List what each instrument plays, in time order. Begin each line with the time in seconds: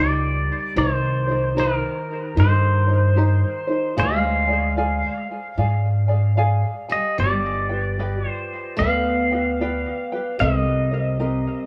Already playing: upright bass C#2, steel-string acoustic guitar G3, ukulele D#4 G4 A#4 D5
0.00 pedal steel guitar D5
0.76 upright bass C2, steel-string acoustic guitar D#3, ukulele D#4 G4 A#4 C5, pedal steel guitar C5
1.27 ukulele D#4 A#4 C5
1.56 steel-string acoustic guitar D#3, ukulele D#4 G4 A#4 C5, pedal steel guitar A#4
2.35 upright bass G2, steel-string acoustic guitar D#3, ukulele D#4 G4 A#4 C5
2.40 pedal steel guitar C5
2.87 ukulele D#4 A#4 C5
3.16 ukulele D#4 G4 A#4 C5
3.67 ukulele D#4 A#4 C5
3.97 upright bass D2, steel-string acoustic guitar G#3, ukulele G#4 D5 F5 G#5, pedal steel guitar F5
4.47 ukulele G#4 D5 G#5
4.77 ukulele G#4 D5 F5 G#5
5.57 upright bass G#2, ukulele G#4 D5 F5 G#5
6.08 ukulele G#4 D5 G#5
6.37 ukulele G#4 D5 F5 G#5
6.89 steel-string acoustic guitar G3, pedal steel guitar D#5, ukulele G#5
7.18 upright bass G1, steel-string acoustic guitar G3, ukulele G4 B4 D5 G5, pedal steel guitar D5
7.69 ukulele G4 B4 G5
7.99 ukulele G4 B4 D5 G5
8.22 steel-string acoustic guitar F3
8.30 pedal steel guitar C5
8.77 upright bass D2, steel-string acoustic guitar B3, ukulele G4 D5, pedal steel guitar F5
8.81 ukulele B4 G5
9.31 ukulele G4 B4 G5
9.61 ukulele G4 B4 D5 G5
10.12 ukulele G4 B4 G5
10.39 upright bass C2, steel-string acoustic guitar G3, ukulele C4 G4 A#4 D#5, pedal steel guitar D#5
10.91 ukulele C4 A#4 D#5
11.20 ukulele C4 G4 A#4 D#5